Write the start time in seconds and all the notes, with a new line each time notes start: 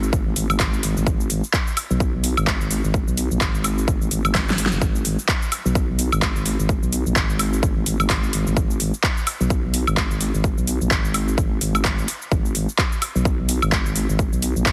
Already playing: G#1
0.03 cabasa
0.13 G#1, kick, cabasa
0.36 G#1, open hi-hat, cabasa
0.50 cabasa, high woodblock
0.60 G#1, kick, clap, open hi-hat, cabasa
0.74 cabasa
0.83 open hi-hat, cabasa
0.97 G#1, cabasa
1.07 G#1, kick, cabasa
1.20 cabasa
1.30 open hi-hat, cabasa
1.44 cabasa
1.53 kick, clap, cabasa
1.67 cabasa
1.77 open hi-hat, cabasa, high woodblock
1.90 B1, cabasa
2.00 kick, cabasa
2.24 open hi-hat, cabasa
2.37 G#1, cabasa, high woodblock
2.47 kick, clap, cabasa
2.61 G#1, cabasa
2.71 open hi-hat, cabasa
2.84 G#1, cabasa
2.94 kick, cabasa
3.08 B1, cabasa
3.17 open hi-hat, cabasa
3.31 A#1, cabasa
3.41 G#1, kick, clap, cabasa
3.55 cabasa
3.64 open hi-hat, cabasa, high woodblock
3.78 cabasa
3.88 G#1, kick, cabasa
4.02 cabasa
4.11 G#1, open hi-hat, cabasa
4.25 cabasa, high woodblock
4.35 kick, snare, clap, open hi-hat, cabasa, high woodblock
4.48 G#1, snare, cabasa
4.58 open hi-hat, cabasa
4.66 snare
4.72 F#1, cabasa
4.82 G#1, kick, cabasa
4.95 cabasa
5.05 open hi-hat, cabasa
5.19 cabasa
5.28 kick, clap, cabasa
5.42 cabasa
5.52 open hi-hat, cabasa, high woodblock
5.65 B1, cabasa
5.75 kick, cabasa
5.99 open hi-hat, cabasa
6.12 G#1, cabasa, high woodblock
6.22 kick, clap, cabasa
6.36 G#1, cabasa
6.46 open hi-hat, cabasa
6.59 G#1, cabasa
6.69 kick, cabasa
6.83 B1, cabasa
6.93 open hi-hat, cabasa
7.06 A#1, cabasa
7.16 G#1, kick, clap, cabasa
7.30 cabasa
7.39 open hi-hat, cabasa, high woodblock
7.53 cabasa
7.63 G#1, kick, cabasa
7.86 G#1, open hi-hat, cabasa
8.00 cabasa, high woodblock
8.10 G#1, kick, clap, open hi-hat, cabasa
8.23 cabasa
8.33 open hi-hat, cabasa
8.47 G#1, cabasa
8.57 G#1, kick, cabasa
8.70 cabasa
8.80 open hi-hat, cabasa
8.94 cabasa
9.03 kick, clap, cabasa
9.17 cabasa
9.27 open hi-hat, cabasa, high woodblock
9.41 B1, cabasa
9.50 kick, cabasa
9.74 open hi-hat, cabasa
9.87 G#1, cabasa, high woodblock
9.97 kick, clap, cabasa
10.11 G#1, cabasa
10.21 open hi-hat, cabasa
10.34 G#1, cabasa
10.44 kick, cabasa
10.58 B1, cabasa
10.67 open hi-hat, cabasa
10.81 A#1, cabasa
10.91 G#1, kick, clap, cabasa
11.05 cabasa
11.14 open hi-hat, cabasa, high woodblock
11.28 cabasa
11.38 G#1, kick, cabasa
11.61 G#1, open hi-hat, cabasa
11.75 cabasa, high woodblock
11.85 kick, clap, open hi-hat, cabasa
11.98 G#1, cabasa
12.08 open hi-hat, cabasa
12.22 cabasa
12.32 G#1, kick, cabasa
12.45 cabasa
12.55 open hi-hat, cabasa
12.69 cabasa
12.78 kick, clap, cabasa
12.92 cabasa
13.02 open hi-hat, cabasa, high woodblock
13.15 B1, cabasa
13.25 kick, cabasa
13.49 open hi-hat, cabasa
13.62 G#1, cabasa, high woodblock
13.72 kick, clap, cabasa
13.86 G#1, cabasa
13.96 open hi-hat, cabasa
14.09 G#1, cabasa
14.19 kick, cabasa
14.33 B1, cabasa
14.42 open hi-hat, cabasa
14.56 A#1, cabasa
14.66 G#1, kick, clap, cabasa